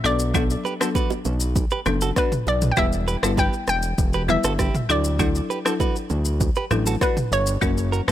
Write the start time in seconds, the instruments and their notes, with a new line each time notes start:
0.04 analog synth bass B1, marimba F#3 B3 D4 A4, synth pluck D5, shaker
0.19 shaker
0.34 marimba F#3 B3 D4 A4, clean electric guitar D4 F#4, kick, low conga, shaker
0.50 shaker
0.65 clean electric guitar G4 B4, low bongo, shaker
0.80 marimba F#3 B3 D4 A4, clean electric guitar F#4 A4, cross-stick, low bongo, shaker
0.95 clean electric guitar F#4 B4, kick, high bongo, shaker
1.10 high bongo, shaker
1.25 analog synth bass B1, low bongo, shaker
1.40 shaker
1.56 kick, low conga, shaker
1.70 clean electric guitar G4 B4, shaker
1.86 analog synth bass F#1, marimba F#3 B3 D4 A4, cross-stick, low conga, shaker
2.01 clean electric guitar F#4 A4, low bongo, shaker
2.16 clean electric guitar D4 F#4, synth pluck B4, kick, cross-stick, high bongo, shaker
2.32 mid tom, shaker
2.47 analog synth bass B1, synth pluck D5, high bongo, shaker
2.62 mid tom, shaker
2.71 synth pluck G5
2.77 analog synth bass E1, marimba G3 B3 E4 B4, clean electric guitar E4 G4, synth pluck E5, kick, low conga, shaker
2.93 shaker
3.08 clean electric guitar G4 B4, shaker
3.23 analog synth bass G1, marimba G3 B3 E4 B4, clean electric guitar F#4 A4, cross-stick, shaker
3.37 clean electric guitar G4 B4, synth pluck G5, kick, high bongo, shaker
3.53 shaker
3.67 analog synth bass E1, synth pluck G5, cross-stick, low bongo, shaker
3.83 shaker
3.98 analog synth bass E1, kick, low conga, shaker
4.13 clean electric guitar G4 B4, shaker
4.28 marimba G3 B3 E4 B4, synth pluck E5, low conga, shaker
4.44 analog synth bass G1, clean electric guitar F#4 A4, cross-stick, low bongo, shaker
4.59 clean electric guitar E4 G4, kick, cross-stick, high bongo, shaker
4.75 mid tom, shaker
4.89 analog synth bass D2, marimba F#3 D4 E4 A4, synth pluck D5, shaker
5.04 shaker
5.19 marimba F#3 D4 E4 A4, clean electric guitar D4 F#4, kick, low conga, shaker
5.35 shaker
5.50 clean electric guitar G4 B4, shaker
5.65 marimba F#3 D4 E4 A4, clean electric guitar F#4 A4, cross-stick, shaker
5.80 clean electric guitar F#4 B4, kick, high bongo, shaker
5.96 shaker
6.10 analog synth bass D2, low bongo, shaker
6.25 shaker
6.41 kick, low conga, shaker
6.55 clean electric guitar G4 B4, shaker
6.71 analog synth bass A1, marimba F#3 D4 E4 A4, cross-stick, low conga, shaker
6.86 clean electric guitar F#4 A4, low bongo, shaker
7.01 clean electric guitar D4 F#4, synth pluck B4, kick, cross-stick, high bongo, shaker
7.17 mid tom, shaker
7.31 analog synth bass G1, synth pluck C#5, shaker
7.47 shaker
7.61 analog synth bass F#1, marimba F#3 A#3 C#4 A#4, clean electric guitar C#4 F#4, kick, low conga, shaker
7.78 shaker
7.92 clean electric guitar F#4 A#4, shaker
8.08 analog synth bass G1, marimba F#3 A#3 C#4 A#4, clean electric guitar A4, cross-stick